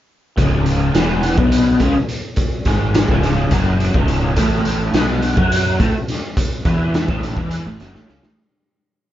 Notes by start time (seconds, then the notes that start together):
0.38 C#1 C#2 C#3, kick, closed hi-hat
0.66 closed hi-hat
0.94 E1 E2 E3, snare, closed hi-hat
1.23 closed hi-hat
1.37 B1 B2 B3, kick
1.52 closed hi-hat
1.80 C#2 C#3 C#4, kick, closed hi-hat
2.09 closed hi-hat
2.36 kick, closed hi-hat
2.65 G#1 G#2 G#3, kick, snare, closed hi-hat
2.94 snare, closed hi-hat
3.09 C#1 C#2 C#3, kick
3.23 snare, closed hi-hat
3.51 F#1 F#2 F#3, kick, snare, closed hi-hat
3.80 closed hi-hat
3.94 C#1 C#2 C#3, kick
4.08 closed hi-hat
4.36 A1 A2 A3, kick, closed hi-hat
4.65 closed hi-hat
4.94 B1 B2 B3, snare, closed hi-hat
5.22 closed hi-hat
5.37 F#2 F#3 F#4, kick
5.52 closed hi-hat
5.80 A2 A3 A4, kick, closed hi-hat
6.08 snare, closed hi-hat
6.37 kick, closed hi-hat
6.65 E2 E3 E4, kick, closed hi-hat
6.94 snare, closed hi-hat
7.08 A1 A2 A3, kick
7.23 snare, closed hi-hat
7.36 E2 E3 E4, kick
7.51 closed hi-hat
7.66 A1 A2 A3
7.80 F#1 F#2 F#3, snare, closed hi-hat
7.94 A1 A2 A3, snare
8.09 C#2 C#3 C#4, snare
8.23 A1 A2 A3, snare